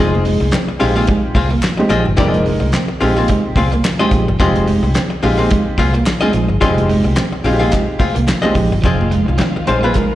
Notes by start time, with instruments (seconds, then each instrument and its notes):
Already playing: fingered electric bass F1, upright piano G#3 C4, hollow-body jazz guitar C4 F4 G#4 D#5
0.00 clean electric guitar F3, upright piano D#4 G#4, muted conga
0.15 high conga
0.25 clean electric guitar G#3, open hi-hat
0.40 fingered electric bass C2, muted hollow-body jazz guitar stroke, muted clean electric guitar stroke, high conga
0.51 clean electric guitar C4, muted hollow-body jazz guitar stroke, snare, clap, closed hi-hat, muted conga
0.68 muted hollow-body jazz guitar stroke
0.79 fingered electric bass A#1, upright piano G#3 C4 D#4 G4, hollow-body jazz guitar C4 F4 G#4 F5, muted clean electric guitar stroke, open hi-hat, low conga
0.96 clean electric guitar A#3, hollow-body jazz guitar C4 F4 G#4 F5
1.07 clean electric guitar G#3, muted hollow-body jazz guitar stroke, kick, closed hi-hat, muted conga
1.35 fingered electric bass C2, hollow-body jazz guitar C4 F4 G#4 F5, muted clean electric guitar stroke, kick, open hi-hat, muted conga, high conga
1.50 clean electric guitar A#3, muted hollow-body jazz guitar stroke
1.63 muted clean electric guitar stroke, snare, clap, closed hi-hat, muted conga
1.77 clean electric guitar G#3, upright piano G#3 C4 D#4 G4, muted hollow-body jazz guitar stroke, high conga
1.89 fingered electric bass A#1, clean electric guitar F3, hollow-body jazz guitar C4 F4 G#4 D#5, closed hi-hat, muted conga, low conga
2.05 fingered electric bass G1, muted hollow-body jazz guitar stroke
2.17 fingered electric bass F1, clean electric guitar F3, upright piano G3 C4 D#4 A#4, hollow-body jazz guitar B3 E4 G4 D5, kick, closed hi-hat, muted conga
2.24 upright piano G#3, hollow-body jazz guitar C4 F4 G#4
2.29 hollow-body jazz guitar D#5
2.34 closed hi-hat, high conga
2.46 clean electric guitar G#3, open hi-hat, muted conga
2.60 fingered electric bass C2, muted hollow-body jazz guitar stroke, muted clean electric guitar stroke, high conga
2.72 clean electric guitar C4, muted hollow-body jazz guitar stroke, snare, clap, closed hi-hat, muted conga
2.88 muted hollow-body jazz guitar stroke
3.00 fingered electric bass A#1, upright piano G#3 C4 D#4 G4, hollow-body jazz guitar C4 F4 G#4 F5, muted clean electric guitar stroke, open hi-hat, muted conga, low conga
3.16 clean electric guitar A#3, hollow-body jazz guitar C4 F4 G#4 F5
3.28 clean electric guitar G#3, muted hollow-body jazz guitar stroke, kick, closed hi-hat, muted conga
3.56 fingered electric bass C2, hollow-body jazz guitar C4 F4 G#4 F5, muted clean electric guitar stroke, kick, open hi-hat, muted conga, high conga
3.72 clean electric guitar A#3, muted hollow-body jazz guitar stroke, closed hi-hat
3.84 muted clean electric guitar stroke, muted hollow-body jazz guitar stroke, snare, clap, closed hi-hat
3.99 upright piano G#3 C4 D#4 G4, clean electric guitar G#3, hollow-body jazz guitar C4 F4 G#4 D#5, high conga
4.11 fingered electric bass A#1, clean electric guitar F3, muted hollow-body jazz guitar stroke, kick, closed hi-hat, low conga
4.28 fingered electric bass G1, muted hollow-body jazz guitar stroke
4.40 fingered electric bass F1, clean electric guitar F3, upright piano G#3 C4 D#4 G4, hollow-body jazz guitar C4 F4 G#4 D#5, kick, closed hi-hat
4.55 closed hi-hat, high conga
4.67 clean electric guitar G#3, open hi-hat
4.83 fingered electric bass C2, muted hollow-body jazz guitar stroke, muted clean electric guitar stroke, high conga
4.94 clean electric guitar C4, muted hollow-body jazz guitar stroke, snare, clap, closed hi-hat, muted conga
5.10 muted hollow-body jazz guitar stroke
5.23 fingered electric bass A#1, upright piano G#3 C4 D#4 G4, hollow-body jazz guitar C4 F4 G#4 F5, muted clean electric guitar stroke, open hi-hat, muted conga, low conga
5.38 clean electric guitar A#3, hollow-body jazz guitar C4 F4 G#4 F5
5.50 clean electric guitar G#3, muted hollow-body jazz guitar stroke, kick, closed hi-hat, muted conga
5.77 fingered electric bass C2, hollow-body jazz guitar C4 F4 G#4 F5, muted clean electric guitar stroke, kick, open hi-hat, high conga
5.94 clean electric guitar A#3, muted hollow-body jazz guitar stroke, closed hi-hat
6.06 muted hollow-body jazz guitar stroke, muted clean electric guitar stroke, snare, clap, closed hi-hat, muted conga
6.21 upright piano G#3 C4 D#4 G#4, clean electric guitar G#3, hollow-body jazz guitar C4 F4 G#4 D#5, high conga
6.33 fingered electric bass A#1, clean electric guitar F3, muted hollow-body jazz guitar stroke, closed hi-hat, low conga
6.48 fingered electric bass G1, muted hollow-body jazz guitar stroke
6.61 clean electric guitar F3, upright piano G3 C4 D#4 G4, hollow-body jazz guitar C4 F4 G#4 D#5, kick, closed hi-hat
6.69 upright piano G#3
6.78 closed hi-hat, high conga
6.89 clean electric guitar G#3, open hi-hat, muted conga
7.04 fingered electric bass C2, muted hollow-body jazz guitar stroke, muted clean electric guitar stroke, high conga
7.16 clean electric guitar C4, muted hollow-body jazz guitar stroke, snare, clap, closed hi-hat
7.32 muted hollow-body jazz guitar stroke
7.44 fingered electric bass A#1, upright piano G#3 C4 D#4 F4, hollow-body jazz guitar C4 F4 G#4 F5, muted clean electric guitar stroke, open hi-hat, muted conga, low conga
7.53 upright piano G4
7.59 clean electric guitar A#3, hollow-body jazz guitar C4 F4 G#4 F5
7.72 clean electric guitar G#3, muted hollow-body jazz guitar stroke, kick, clap, closed hi-hat
7.99 hollow-body jazz guitar C4 F4 G#4 F5, muted fingered electric bass stroke, muted clean electric guitar stroke, kick, open hi-hat, muted conga, high conga
8.15 fingered electric bass C2, clean electric guitar A#3, muted hollow-body jazz guitar stroke, closed hi-hat
8.27 muted hollow-body jazz guitar stroke, muted clean electric guitar stroke, snare, clap, closed hi-hat, muted conga
8.42 clean electric guitar G#3, upright piano G#3 C4 D#4 G4, hollow-body jazz guitar C4 F4 G#4 D#5, high conga
8.55 fingered electric bass A#1, clean electric guitar F3, muted hollow-body jazz guitar stroke, kick, open hi-hat, low conga
8.71 fingered electric bass G1, muted hollow-body jazz guitar stroke
8.82 fingered electric bass F1, string machine D#3 F3 F4, clean electric guitar F3, hollow-body jazz guitar C4 F4 G#4 D#5, kick, closed hi-hat, muted conga
9.01 high conga
9.11 clean electric guitar G#3, closed hi-hat
9.26 fingered electric bass C2, muted clean electric guitar stroke, muted hollow-body jazz guitar stroke
9.38 clean electric guitar C4, muted hollow-body jazz guitar stroke, snare, clap, closed hi-hat, muted conga
9.56 muted hollow-body jazz guitar stroke
9.66 fingered electric bass A#1, upright piano G3 G#3 D#4 C5, hollow-body jazz guitar C4 F4 G#4 F5, muted clean electric guitar stroke, closed hi-hat, low conga
9.81 clean electric guitar A#3, hollow-body jazz guitar C4 F4 G#4 F5, upright piano B4
9.93 clean electric guitar G#3, upright piano A#4, muted hollow-body jazz guitar stroke, kick, closed hi-hat, muted conga